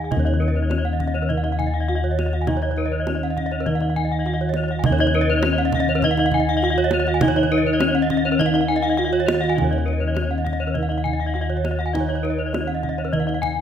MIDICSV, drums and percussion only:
0, 0, Header, 1, 2, 480
1, 0, Start_track
1, 0, Tempo, 591133
1, 96, Time_signature, 4, 2, 24, 8
1, 11052, End_track
2, 0, Start_track
2, 0, Title_t, "Kendang"
2, 94, Note_on_c, 9, 64, 53
2, 175, Note_off_c, 9, 64, 0
2, 218, Note_on_c, 9, 62, 14
2, 300, Note_off_c, 9, 62, 0
2, 341, Note_on_c, 9, 62, 12
2, 422, Note_off_c, 9, 62, 0
2, 575, Note_on_c, 9, 63, 39
2, 656, Note_off_c, 9, 63, 0
2, 813, Note_on_c, 9, 62, 13
2, 813, Note_on_c, 9, 64, 34
2, 894, Note_off_c, 9, 62, 0
2, 894, Note_off_c, 9, 64, 0
2, 934, Note_on_c, 9, 62, 13
2, 1015, Note_off_c, 9, 62, 0
2, 1056, Note_on_c, 9, 62, 13
2, 1056, Note_on_c, 9, 64, 33
2, 1137, Note_off_c, 9, 62, 0
2, 1137, Note_off_c, 9, 64, 0
2, 1169, Note_on_c, 9, 62, 18
2, 1250, Note_off_c, 9, 62, 0
2, 1294, Note_on_c, 9, 64, 31
2, 1375, Note_off_c, 9, 64, 0
2, 1531, Note_on_c, 9, 62, 12
2, 1613, Note_off_c, 9, 62, 0
2, 1776, Note_on_c, 9, 63, 29
2, 1857, Note_off_c, 9, 63, 0
2, 1893, Note_on_c, 9, 62, 13
2, 1974, Note_off_c, 9, 62, 0
2, 2008, Note_on_c, 9, 63, 38
2, 2008, Note_on_c, 9, 64, 47
2, 2089, Note_off_c, 9, 63, 0
2, 2089, Note_off_c, 9, 64, 0
2, 2126, Note_on_c, 9, 62, 16
2, 2207, Note_off_c, 9, 62, 0
2, 2244, Note_on_c, 9, 62, 15
2, 2326, Note_off_c, 9, 62, 0
2, 2492, Note_on_c, 9, 63, 39
2, 2573, Note_off_c, 9, 63, 0
2, 2740, Note_on_c, 9, 62, 11
2, 2740, Note_on_c, 9, 64, 31
2, 2821, Note_off_c, 9, 62, 0
2, 2821, Note_off_c, 9, 64, 0
2, 2851, Note_on_c, 9, 62, 15
2, 2933, Note_off_c, 9, 62, 0
2, 2975, Note_on_c, 9, 62, 16
2, 2975, Note_on_c, 9, 64, 33
2, 3056, Note_off_c, 9, 62, 0
2, 3056, Note_off_c, 9, 64, 0
2, 3090, Note_on_c, 9, 62, 17
2, 3171, Note_off_c, 9, 62, 0
2, 3218, Note_on_c, 9, 64, 28
2, 3299, Note_off_c, 9, 64, 0
2, 3456, Note_on_c, 9, 62, 13
2, 3537, Note_off_c, 9, 62, 0
2, 3684, Note_on_c, 9, 63, 29
2, 3765, Note_off_c, 9, 63, 0
2, 3803, Note_on_c, 9, 62, 15
2, 3885, Note_off_c, 9, 62, 0
2, 3928, Note_on_c, 9, 64, 88
2, 4009, Note_off_c, 9, 64, 0
2, 4048, Note_on_c, 9, 62, 27
2, 4130, Note_off_c, 9, 62, 0
2, 4175, Note_on_c, 9, 62, 23
2, 4256, Note_off_c, 9, 62, 0
2, 4406, Note_on_c, 9, 63, 76
2, 4487, Note_off_c, 9, 63, 0
2, 4648, Note_on_c, 9, 62, 23
2, 4648, Note_on_c, 9, 64, 64
2, 4729, Note_off_c, 9, 62, 0
2, 4729, Note_off_c, 9, 64, 0
2, 4776, Note_on_c, 9, 62, 23
2, 4857, Note_off_c, 9, 62, 0
2, 4891, Note_on_c, 9, 62, 23
2, 4891, Note_on_c, 9, 64, 55
2, 4972, Note_off_c, 9, 62, 0
2, 4972, Note_off_c, 9, 64, 0
2, 5013, Note_on_c, 9, 62, 31
2, 5094, Note_off_c, 9, 62, 0
2, 5128, Note_on_c, 9, 64, 54
2, 5210, Note_off_c, 9, 64, 0
2, 5378, Note_on_c, 9, 62, 21
2, 5459, Note_off_c, 9, 62, 0
2, 5609, Note_on_c, 9, 63, 70
2, 5690, Note_off_c, 9, 63, 0
2, 5740, Note_on_c, 9, 62, 21
2, 5821, Note_off_c, 9, 62, 0
2, 5854, Note_on_c, 9, 63, 58
2, 5854, Note_on_c, 9, 64, 82
2, 5935, Note_off_c, 9, 63, 0
2, 5935, Note_off_c, 9, 64, 0
2, 5978, Note_on_c, 9, 62, 24
2, 6059, Note_off_c, 9, 62, 0
2, 6103, Note_on_c, 9, 62, 24
2, 6184, Note_off_c, 9, 62, 0
2, 6338, Note_on_c, 9, 62, 31
2, 6338, Note_on_c, 9, 63, 75
2, 6419, Note_off_c, 9, 62, 0
2, 6419, Note_off_c, 9, 63, 0
2, 6578, Note_on_c, 9, 62, 22
2, 6578, Note_on_c, 9, 64, 54
2, 6660, Note_off_c, 9, 62, 0
2, 6660, Note_off_c, 9, 64, 0
2, 6706, Note_on_c, 9, 62, 20
2, 6787, Note_off_c, 9, 62, 0
2, 6827, Note_on_c, 9, 62, 21
2, 6827, Note_on_c, 9, 64, 62
2, 6909, Note_off_c, 9, 62, 0
2, 6909, Note_off_c, 9, 64, 0
2, 6945, Note_on_c, 9, 62, 27
2, 7026, Note_off_c, 9, 62, 0
2, 7301, Note_on_c, 9, 62, 19
2, 7382, Note_off_c, 9, 62, 0
2, 7539, Note_on_c, 9, 62, 20
2, 7539, Note_on_c, 9, 63, 61
2, 7620, Note_off_c, 9, 62, 0
2, 7620, Note_off_c, 9, 63, 0
2, 7663, Note_on_c, 9, 62, 23
2, 7744, Note_off_c, 9, 62, 0
2, 7781, Note_on_c, 9, 64, 48
2, 7862, Note_off_c, 9, 64, 0
2, 7898, Note_on_c, 9, 62, 14
2, 7979, Note_off_c, 9, 62, 0
2, 8022, Note_on_c, 9, 62, 13
2, 8103, Note_off_c, 9, 62, 0
2, 8255, Note_on_c, 9, 63, 36
2, 8336, Note_off_c, 9, 63, 0
2, 8498, Note_on_c, 9, 62, 13
2, 8498, Note_on_c, 9, 64, 35
2, 8579, Note_off_c, 9, 62, 0
2, 8579, Note_off_c, 9, 64, 0
2, 8730, Note_on_c, 9, 62, 13
2, 8730, Note_on_c, 9, 64, 38
2, 8811, Note_off_c, 9, 62, 0
2, 8811, Note_off_c, 9, 64, 0
2, 8863, Note_on_c, 9, 62, 15
2, 8944, Note_off_c, 9, 62, 0
2, 8978, Note_on_c, 9, 64, 34
2, 9059, Note_off_c, 9, 64, 0
2, 9223, Note_on_c, 9, 62, 11
2, 9304, Note_off_c, 9, 62, 0
2, 9457, Note_on_c, 9, 63, 34
2, 9538, Note_off_c, 9, 63, 0
2, 9586, Note_on_c, 9, 62, 14
2, 9667, Note_off_c, 9, 62, 0
2, 9704, Note_on_c, 9, 63, 30
2, 9704, Note_on_c, 9, 64, 43
2, 9785, Note_off_c, 9, 63, 0
2, 9785, Note_off_c, 9, 64, 0
2, 9823, Note_on_c, 9, 62, 14
2, 9904, Note_off_c, 9, 62, 0
2, 9944, Note_on_c, 9, 62, 16
2, 10026, Note_off_c, 9, 62, 0
2, 10186, Note_on_c, 9, 63, 42
2, 10267, Note_off_c, 9, 63, 0
2, 10421, Note_on_c, 9, 62, 13
2, 10421, Note_on_c, 9, 64, 29
2, 10502, Note_off_c, 9, 62, 0
2, 10502, Note_off_c, 9, 64, 0
2, 10542, Note_on_c, 9, 62, 14
2, 10623, Note_off_c, 9, 62, 0
2, 10665, Note_on_c, 9, 62, 15
2, 10665, Note_on_c, 9, 64, 36
2, 10746, Note_off_c, 9, 62, 0
2, 10746, Note_off_c, 9, 64, 0
2, 10791, Note_on_c, 9, 62, 17
2, 10873, Note_off_c, 9, 62, 0
2, 10905, Note_on_c, 9, 64, 42
2, 10987, Note_off_c, 9, 64, 0
2, 11052, End_track
0, 0, End_of_file